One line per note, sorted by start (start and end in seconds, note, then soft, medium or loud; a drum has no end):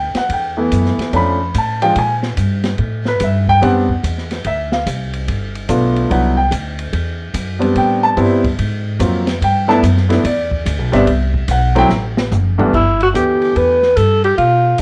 0.00 0.13 D2 medium
0.00 0.16 G5 medium
0.14 0.30 F#5 medium
0.14 muted upright bass stroke soft
0.14 snare medium
0.14 ride medium
0.29 0.70 E2 medium
0.29 0.58 G5 medium
0.29 kick soft
0.29 ride medium
0.57 1.10 E3 medium
0.57 1.10 A3 medium
0.57 1.10 B3 medium
0.57 1.10 E4 medium
0.71 0.97 F#2 medium
0.71 kick soft
0.71 hi-hat pedal medium
0.71 ride medium
0.86 snare soft
0.97 muted upright bass stroke soft
0.97 snare soft
0.97 ride soft
1.13 1.53 F2 medium
1.13 1.37 F3 medium
1.13 1.37 A3 medium
1.13 1.38 C#4 medium
1.13 1.38 D4 medium
1.13 1.53 B5 medium
1.13 kick soft
1.13 ride medium
1.54 1.95 A2 medium
1.54 1.83 A5 medium
1.54 kick soft
1.54 hi-hat pedal medium
1.54 ride medium
1.82 1.95 F3 medium
1.82 1.95 G#3 medium
1.82 1.95 D4 medium
1.82 1.95 F4 medium
1.82 1.96 G5 loud
1.82 ride medium
1.96 2.36 A#2 medium
1.96 2.14 G#5 medium
1.96 kick soft
1.96 ride medium
2.23 snare soft
2.37 2.78 G2 medium
2.37 kick soft
2.37 hi-hat pedal medium
2.37 ride medium
2.64 snare medium
2.64 ride soft
2.78 3.19 A2 medium
2.78 kick soft
2.78 ride medium
3.05 3.21 B4 medium
3.05 snare soft
3.20 3.61 G2 medium
3.20 3.48 E5 medium
3.20 kick soft
3.20 hi-hat pedal medium
3.20 ride medium
3.48 3.62 G5 loud
3.48 kick soft
3.61 4.02 F#2 medium
3.61 3.86 G3 medium
3.61 3.86 B3 medium
3.61 3.86 C4 medium
3.61 3.86 D4 medium
3.61 4.27 F#5 medium
3.61 kick soft
3.61 ride medium
3.89 kick medium
4.04 4.44 E2 medium
4.04 kick soft
4.04 hi-hat pedal medium
4.04 ride medium
4.18 snare soft
4.31 snare soft
4.31 ride soft
4.45 4.85 D2 medium
4.45 4.72 E5 medium
4.45 kick soft
4.45 ride medium
4.72 4.86 F5 medium
4.72 snare medium
4.86 5.27 C2 medium
4.86 kick soft
4.86 hi-hat pedal medium
4.86 ride medium
5.13 ride soft
5.28 5.68 G1 medium
5.28 kick soft
5.28 ride medium
5.55 ride soft
5.69 6.09 B1 medium
5.69 6.10 A3 medium
5.69 6.08 B3 medium
5.69 6.09 D4 medium
5.69 6.11 F4 medium
5.69 kick soft
5.69 hi-hat pedal medium
5.69 ride medium
5.96 ride soft
6.10 6.50 C2 medium
6.10 6.34 F#3 medium
6.10 6.34 B3 medium
6.10 6.35 D4 medium
6.10 6.35 E4 medium
6.10 6.37 F#5 medium
6.10 kick soft
6.10 ride medium
6.37 6.51 G5 medium
6.51 6.92 D2 medium
6.51 kick soft
6.51 hi-hat pedal medium
6.51 ride medium
6.79 ride medium
6.93 7.33 E2 medium
6.93 kick soft
6.93 ride medium
7.34 7.74 F#2 medium
7.34 kick soft
7.34 hi-hat pedal medium
7.34 ride medium
7.59 8.13 G3 medium
7.59 8.13 B3 medium
7.59 8.14 C4 medium
7.59 8.14 D4 medium
7.59 ride soft
7.76 8.16 A2 medium
7.76 8.03 G5 medium
7.76 kick soft
7.76 ride medium
8.03 8.17 A5 loud
8.16 8.57 G2 medium
8.16 8.41 G3 medium
8.16 8.41 B3 medium
8.16 8.41 C4 medium
8.16 8.41 E4 medium
8.16 kick soft
8.16 hi-hat pedal medium
8.16 ride medium
8.44 kick medium
8.44 ride medium
8.59 8.99 G#2 medium
8.59 kick soft
8.59 ride medium
8.99 9.40 F2 medium
8.99 9.24 F#3 medium
8.99 9.24 A#3 medium
8.99 9.24 C4 medium
8.99 9.24 F4 medium
8.99 kick soft
8.99 hi-hat pedal medium
8.99 ride medium
9.27 snare medium
9.27 ride soft
9.42 9.82 G2 medium
9.42 9.69 G5 medium
9.42 kick soft
9.42 ride medium
9.68 9.81 A3 medium
9.68 9.81 B3 medium
9.68 9.81 D4 medium
9.68 9.81 E4 medium
9.68 9.77 A5 loud
9.68 snare soft
9.83 10.23 F#2 loud
9.83 kick soft
9.83 hi-hat pedal medium
9.83 ride medium
9.97 snare soft
10.09 10.22 A3 medium
10.09 10.22 B3 medium
10.09 10.23 D4 medium
10.09 10.23 E4 medium
10.09 snare medium
10.09 ride medium
10.24 10.64 E2 medium
10.24 10.89 D5 medium
10.24 kick soft
10.24 ride medium
10.51 kick medium
10.66 10.78 D2 medium
10.66 kick soft
10.66 hi-hat pedal medium
10.66 ride medium
10.78 10.92 B1 medium
10.92 11.06 G1 medium
10.92 11.05 G3 medium
10.92 11.05 B3 medium
10.92 11.06 C4 medium
10.92 11.06 D4 medium
10.92 11.45 E5 medium
10.92 snare soft
10.92 ride medium
11.07 11.47 C2 medium
11.07 kick soft
11.07 ride medium
11.34 kick medium
11.48 11.88 B1 medium
11.48 11.76 F#5 medium
11.48 kick soft
11.48 hi-hat pedal medium
11.48 ride medium
11.75 11.88 F#3 medium
11.75 11.88 A3 medium
11.75 11.88 C4 medium
11.75 11.89 E4 medium
11.75 11.86 G5 loud
11.75 ride medium
11.89 12.29 A1 medium
11.89 snare medium
12.17 snare medium
12.32 12.71 F#1 medium
12.32 floor tom medium
12.32 hi-hat pedal medium
12.58 12.71 G2 medium
12.58 12.71 E3 medium
12.58 12.71 A3 medium
12.58 12.71 B3 medium
12.58 12.71 D4 medium
12.58 floor tom loud
12.73 13.13 G1 medium
12.73 12.99 E4 medium
12.73 kick medium
12.73 crash medium
13.00 13.09 F#4 medium
13.00 ride soft
13.13 13.54 D2 medium
13.13 13.76 E3 medium
13.13 13.76 A3 medium
13.13 13.77 B3 medium
13.13 13.77 D4 medium
13.13 13.77 G4 medium
13.13 13.58 G4 medium
13.13 kick soft
13.13 hi-hat pedal medium
13.13 ride medium
13.42 ride soft
13.56 13.95 E2 medium
13.56 13.98 B4 medium
13.56 kick soft
13.56 ride medium
13.83 snare soft
13.97 14.37 G2 medium
13.97 14.23 A4 medium
13.97 kick soft
13.97 hi-hat pedal medium
13.97 ride medium
14.24 14.37 G4 medium
14.24 ride soft
14.38 14.78 B2 medium
14.38 14.81 F4 medium
14.38 kick soft
14.38 ride soft
14.78 14.82 A2 medium
14.78 hi-hat pedal medium
14.78 ride medium